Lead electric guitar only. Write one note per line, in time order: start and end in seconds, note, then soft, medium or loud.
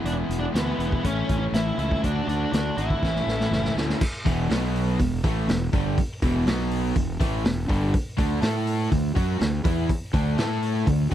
0.06 0.12 D4 medium
0.40 0.45 D4 medium
0.55 0.87 B3 medium
0.88 1.05 B3 medium
1.06 1.37 C#4 medium
1.38 1.43 C#4 medium
1.54 1.78 E4 loud
1.79 2.03 E4 loud
2.04 2.26 D4 medium
2.28 2.51 D4 medium
2.53 2.77 D4 medium
2.78 3.72 E4 medium